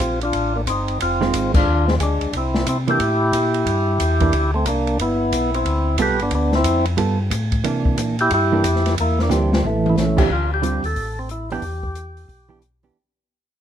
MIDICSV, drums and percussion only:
0, 0, Header, 1, 2, 480
1, 0, Start_track
1, 0, Tempo, 332042
1, 1453, Time_signature, 4, 2, 24, 8
1, 19663, End_track
2, 0, Start_track
2, 0, Title_t, "Drums"
2, 0, Note_on_c, 9, 44, 51
2, 0, Note_on_c, 9, 51, 66
2, 141, Note_off_c, 9, 44, 0
2, 141, Note_off_c, 9, 51, 0
2, 308, Note_on_c, 9, 51, 43
2, 452, Note_off_c, 9, 51, 0
2, 478, Note_on_c, 9, 51, 63
2, 479, Note_on_c, 9, 36, 21
2, 623, Note_off_c, 9, 36, 0
2, 623, Note_off_c, 9, 51, 0
2, 961, Note_on_c, 9, 36, 19
2, 968, Note_on_c, 9, 44, 54
2, 968, Note_on_c, 9, 51, 62
2, 1106, Note_off_c, 9, 36, 0
2, 1113, Note_off_c, 9, 44, 0
2, 1113, Note_off_c, 9, 51, 0
2, 1274, Note_on_c, 9, 51, 39
2, 1419, Note_off_c, 9, 51, 0
2, 1443, Note_on_c, 9, 36, 20
2, 1452, Note_on_c, 9, 51, 66
2, 1587, Note_off_c, 9, 36, 0
2, 1597, Note_off_c, 9, 51, 0
2, 1752, Note_on_c, 9, 38, 43
2, 1896, Note_off_c, 9, 38, 0
2, 1923, Note_on_c, 9, 36, 23
2, 1931, Note_on_c, 9, 44, 49
2, 1931, Note_on_c, 9, 51, 67
2, 2068, Note_off_c, 9, 36, 0
2, 2076, Note_off_c, 9, 44, 0
2, 2076, Note_off_c, 9, 51, 0
2, 2230, Note_on_c, 9, 36, 78
2, 2232, Note_on_c, 9, 49, 74
2, 2374, Note_off_c, 9, 36, 0
2, 2377, Note_off_c, 9, 49, 0
2, 2716, Note_on_c, 9, 38, 45
2, 2860, Note_off_c, 9, 38, 0
2, 2887, Note_on_c, 9, 36, 21
2, 2891, Note_on_c, 9, 44, 52
2, 2891, Note_on_c, 9, 51, 62
2, 3031, Note_off_c, 9, 36, 0
2, 3036, Note_off_c, 9, 44, 0
2, 3036, Note_off_c, 9, 51, 0
2, 3195, Note_on_c, 9, 51, 42
2, 3340, Note_off_c, 9, 51, 0
2, 3370, Note_on_c, 9, 36, 25
2, 3372, Note_on_c, 9, 51, 60
2, 3514, Note_off_c, 9, 36, 0
2, 3517, Note_off_c, 9, 51, 0
2, 3677, Note_on_c, 9, 38, 63
2, 3822, Note_off_c, 9, 38, 0
2, 3851, Note_on_c, 9, 36, 19
2, 3853, Note_on_c, 9, 44, 54
2, 3853, Note_on_c, 9, 51, 64
2, 3995, Note_off_c, 9, 36, 0
2, 3997, Note_off_c, 9, 44, 0
2, 3997, Note_off_c, 9, 51, 0
2, 4159, Note_on_c, 9, 51, 42
2, 4304, Note_off_c, 9, 51, 0
2, 4331, Note_on_c, 9, 36, 19
2, 4333, Note_on_c, 9, 51, 61
2, 4476, Note_off_c, 9, 36, 0
2, 4477, Note_off_c, 9, 51, 0
2, 4813, Note_on_c, 9, 36, 16
2, 4816, Note_on_c, 9, 44, 54
2, 4816, Note_on_c, 9, 51, 70
2, 4958, Note_off_c, 9, 36, 0
2, 4960, Note_off_c, 9, 44, 0
2, 4960, Note_off_c, 9, 51, 0
2, 5120, Note_on_c, 9, 51, 41
2, 5265, Note_off_c, 9, 51, 0
2, 5296, Note_on_c, 9, 36, 26
2, 5299, Note_on_c, 9, 51, 65
2, 5440, Note_off_c, 9, 36, 0
2, 5444, Note_off_c, 9, 51, 0
2, 5775, Note_on_c, 9, 36, 26
2, 5778, Note_on_c, 9, 44, 50
2, 5778, Note_on_c, 9, 51, 67
2, 5919, Note_off_c, 9, 36, 0
2, 5923, Note_off_c, 9, 44, 0
2, 5923, Note_off_c, 9, 51, 0
2, 6076, Note_on_c, 9, 51, 47
2, 6078, Note_on_c, 9, 36, 47
2, 6221, Note_off_c, 9, 51, 0
2, 6223, Note_off_c, 9, 36, 0
2, 6255, Note_on_c, 9, 36, 23
2, 6257, Note_on_c, 9, 51, 61
2, 6400, Note_off_c, 9, 36, 0
2, 6401, Note_off_c, 9, 51, 0
2, 6731, Note_on_c, 9, 44, 53
2, 6731, Note_on_c, 9, 51, 66
2, 6735, Note_on_c, 9, 36, 22
2, 6876, Note_off_c, 9, 44, 0
2, 6876, Note_off_c, 9, 51, 0
2, 6880, Note_off_c, 9, 36, 0
2, 7042, Note_on_c, 9, 51, 43
2, 7187, Note_off_c, 9, 51, 0
2, 7216, Note_on_c, 9, 36, 21
2, 7219, Note_on_c, 9, 51, 63
2, 7361, Note_off_c, 9, 36, 0
2, 7364, Note_off_c, 9, 51, 0
2, 7696, Note_on_c, 9, 36, 18
2, 7697, Note_on_c, 9, 44, 66
2, 7697, Note_on_c, 9, 51, 68
2, 7840, Note_off_c, 9, 36, 0
2, 7842, Note_off_c, 9, 44, 0
2, 7842, Note_off_c, 9, 51, 0
2, 8013, Note_on_c, 9, 51, 42
2, 8157, Note_off_c, 9, 51, 0
2, 8174, Note_on_c, 9, 36, 19
2, 8176, Note_on_c, 9, 51, 54
2, 8319, Note_off_c, 9, 36, 0
2, 8321, Note_off_c, 9, 51, 0
2, 8642, Note_on_c, 9, 44, 52
2, 8642, Note_on_c, 9, 51, 73
2, 8648, Note_on_c, 9, 36, 22
2, 8787, Note_off_c, 9, 44, 0
2, 8787, Note_off_c, 9, 51, 0
2, 8793, Note_off_c, 9, 36, 0
2, 8954, Note_on_c, 9, 51, 42
2, 9099, Note_off_c, 9, 51, 0
2, 9119, Note_on_c, 9, 51, 53
2, 9126, Note_on_c, 9, 36, 25
2, 9263, Note_off_c, 9, 51, 0
2, 9270, Note_off_c, 9, 36, 0
2, 9424, Note_on_c, 9, 38, 54
2, 9569, Note_off_c, 9, 38, 0
2, 9602, Note_on_c, 9, 44, 52
2, 9602, Note_on_c, 9, 51, 71
2, 9604, Note_on_c, 9, 36, 23
2, 9747, Note_off_c, 9, 44, 0
2, 9747, Note_off_c, 9, 51, 0
2, 9748, Note_off_c, 9, 36, 0
2, 9909, Note_on_c, 9, 51, 47
2, 10054, Note_off_c, 9, 51, 0
2, 10085, Note_on_c, 9, 51, 65
2, 10086, Note_on_c, 9, 36, 20
2, 10229, Note_off_c, 9, 51, 0
2, 10231, Note_off_c, 9, 36, 0
2, 10567, Note_on_c, 9, 36, 24
2, 10571, Note_on_c, 9, 44, 56
2, 10571, Note_on_c, 9, 51, 65
2, 10712, Note_off_c, 9, 36, 0
2, 10715, Note_off_c, 9, 44, 0
2, 10715, Note_off_c, 9, 51, 0
2, 10869, Note_on_c, 9, 51, 45
2, 10871, Note_on_c, 9, 36, 47
2, 11013, Note_off_c, 9, 51, 0
2, 11015, Note_off_c, 9, 36, 0
2, 11047, Note_on_c, 9, 36, 21
2, 11049, Note_on_c, 9, 51, 65
2, 11192, Note_off_c, 9, 36, 0
2, 11194, Note_off_c, 9, 51, 0
2, 11351, Note_on_c, 9, 36, 60
2, 11496, Note_off_c, 9, 36, 0
2, 11529, Note_on_c, 9, 36, 20
2, 11530, Note_on_c, 9, 44, 59
2, 11530, Note_on_c, 9, 51, 66
2, 11674, Note_off_c, 9, 36, 0
2, 11675, Note_off_c, 9, 44, 0
2, 11675, Note_off_c, 9, 51, 0
2, 11836, Note_on_c, 9, 51, 47
2, 11981, Note_off_c, 9, 51, 0
2, 12007, Note_on_c, 9, 51, 64
2, 12010, Note_on_c, 9, 36, 22
2, 12152, Note_off_c, 9, 51, 0
2, 12155, Note_off_c, 9, 36, 0
2, 12489, Note_on_c, 9, 44, 58
2, 12489, Note_on_c, 9, 51, 64
2, 12491, Note_on_c, 9, 36, 20
2, 12633, Note_off_c, 9, 44, 0
2, 12633, Note_off_c, 9, 51, 0
2, 12635, Note_off_c, 9, 36, 0
2, 12658, Note_on_c, 9, 38, 28
2, 12802, Note_off_c, 9, 38, 0
2, 12804, Note_on_c, 9, 51, 47
2, 12813, Note_on_c, 9, 38, 39
2, 12949, Note_off_c, 9, 51, 0
2, 12957, Note_off_c, 9, 38, 0
2, 12974, Note_on_c, 9, 36, 21
2, 12978, Note_on_c, 9, 51, 67
2, 13118, Note_off_c, 9, 36, 0
2, 13123, Note_off_c, 9, 51, 0
2, 13284, Note_on_c, 9, 38, 45
2, 13429, Note_off_c, 9, 38, 0
2, 13452, Note_on_c, 9, 38, 44
2, 13452, Note_on_c, 9, 44, 56
2, 13597, Note_off_c, 9, 38, 0
2, 13597, Note_off_c, 9, 44, 0
2, 13776, Note_on_c, 9, 38, 68
2, 13921, Note_off_c, 9, 38, 0
2, 13936, Note_on_c, 9, 48, 60
2, 14081, Note_off_c, 9, 48, 0
2, 14252, Note_on_c, 9, 48, 82
2, 14397, Note_off_c, 9, 48, 0
2, 14419, Note_on_c, 9, 38, 47
2, 14419, Note_on_c, 9, 44, 50
2, 14563, Note_off_c, 9, 38, 0
2, 14563, Note_off_c, 9, 44, 0
2, 14713, Note_on_c, 9, 36, 61
2, 14719, Note_on_c, 9, 49, 67
2, 14858, Note_off_c, 9, 36, 0
2, 14863, Note_off_c, 9, 49, 0
2, 14889, Note_on_c, 9, 36, 33
2, 15033, Note_off_c, 9, 36, 0
2, 15371, Note_on_c, 9, 42, 49
2, 15516, Note_off_c, 9, 42, 0
2, 15667, Note_on_c, 9, 46, 39
2, 15812, Note_off_c, 9, 46, 0
2, 15844, Note_on_c, 9, 36, 31
2, 15845, Note_on_c, 9, 46, 43
2, 15988, Note_off_c, 9, 36, 0
2, 15989, Note_off_c, 9, 46, 0
2, 16324, Note_on_c, 9, 42, 46
2, 16468, Note_off_c, 9, 42, 0
2, 16630, Note_on_c, 9, 46, 32
2, 16775, Note_off_c, 9, 46, 0
2, 16798, Note_on_c, 9, 46, 45
2, 16802, Note_on_c, 9, 36, 33
2, 16943, Note_off_c, 9, 46, 0
2, 16946, Note_off_c, 9, 36, 0
2, 17105, Note_on_c, 9, 36, 51
2, 17249, Note_off_c, 9, 36, 0
2, 17279, Note_on_c, 9, 42, 53
2, 17424, Note_off_c, 9, 42, 0
2, 17591, Note_on_c, 9, 46, 35
2, 17736, Note_off_c, 9, 46, 0
2, 17762, Note_on_c, 9, 36, 30
2, 17766, Note_on_c, 9, 46, 38
2, 17906, Note_off_c, 9, 36, 0
2, 17911, Note_off_c, 9, 46, 0
2, 18240, Note_on_c, 9, 42, 43
2, 18385, Note_off_c, 9, 42, 0
2, 18546, Note_on_c, 9, 46, 35
2, 18690, Note_off_c, 9, 46, 0
2, 19663, End_track
0, 0, End_of_file